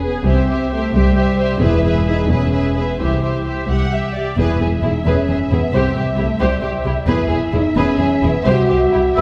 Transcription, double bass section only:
Already playing: E1
0.26 C2
0.93 C2
1.61 E1
2.29 E1
2.99 C2
3.69 C2
4.38 E1
4.60 E1
4.83 E1
5.06 E1
5.28 E1
5.51 E1
5.73 C2
5.96 C2
6.19 C2
6.41 C2
6.63 C2
6.85 C2
7.07 E1
7.30 E1
7.53 E1
7.76 E1
8.00 E1
8.23 E1
8.47 C2
8.71 C2
8.94 C2
9.18 E1

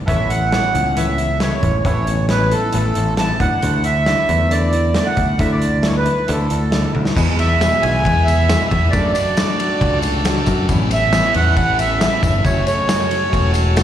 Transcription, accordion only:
0.08 E5
0.30 F#5
0.96 E5
1.40 C#5
1.84 C#5
2.31 B4
2.51 A4
3.18 A5
3.41 F#5
3.85 E5
4.51 D5
4.95 D5
5.06 F#5
5.40 E5
5.52 D5
5.86 C#5
5.97 B4
6.31 A4
7.40 E5
7.82 G#5
8.25 E5
8.69 E5
8.90 D5
9.13 D5
10.93 E5
11.36 F#5
11.57 F#5
11.79 E5
12.01 E5
12.24 E5
12.45 C#5
12.67 C#5

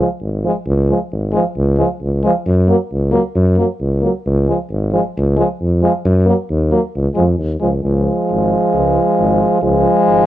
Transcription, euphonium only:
0.44 F3
0.90 F3
1.35 F3
1.79 F3
2.25 F3
2.68 F#3
3.12 F#3
3.58 F#3
4.03 F#3
4.49 F3
4.92 F3
5.38 F3
5.83 F3
6.27 F#3
6.71 F#3
7.16 F3
7.61 F3
7.84 F3
9.64 F3

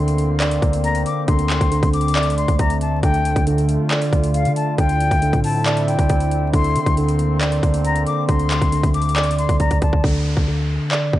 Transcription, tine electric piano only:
Already playing: D3
0.40 D5
1.27 D3
1.71 D3
2.16 D5
3.03 D3
3.47 D3
3.91 D5
4.79 D3
5.22 D3
5.66 D5
6.53 D3
6.97 D3
7.41 D5
8.28 D3
8.72 D3
9.16 D5
10.04 D3
10.48 D3
10.92 D5

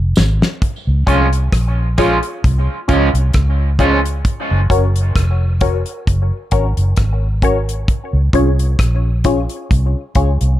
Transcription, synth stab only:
1.07 C#4 F4 G#4 C#5
1.98 C#4 F4 G#4 C#5
2.88 C#4 F4 G#4 C#5
3.79 C#4 F4 G#4 C#5
4.70 C#4 F#4 A#4 C#5
5.61 C#4 F#4 A#4 C#5
6.52 C#4 F#4 A#4 C#5
7.43 C#4 F#4 A#4 C#5
8.34 C#4 F4 G#4 C#5
9.25 C#4 F4 G#4 C#5
10.16 C#4 F4 G#4 C#5

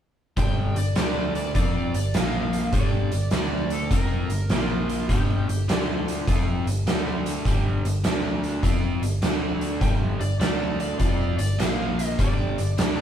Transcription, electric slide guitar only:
0.39 G5
0.78 D5
0.98 D5
1.36 D5
1.56 D5
1.95 D5
2.15 F5
2.73 D5
3.33 D5
3.73 A4
3.92 A#4
4.51 F4
5.09 G4
5.87 F4
9.81 G5
10.21 D5
10.40 D5
10.81 D5
11.00 D5
11.38 D5
11.58 F5
12.06 D#5
12.20 D5
12.80 D5

